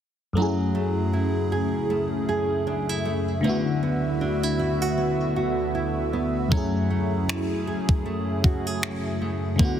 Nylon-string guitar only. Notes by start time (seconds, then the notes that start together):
0.37 F#3
0.75 A3
1.13 E4
1.52 G#4
1.90 A3
2.29 G#4
2.67 D4
2.89 E4
3.05 A3
3.44 D3
3.83 B3
4.21 D4
4.43 E4
4.59 E4
4.82 F#4
4.98 B3
5.36 F#4
5.75 E4
6.13 B3
6.52 F#3
6.90 A3
7.29 E4
7.67 G#4
8.06 A3
8.44 F#4
8.67 G#4
8.83 E4
9.21 A3
9.60 D3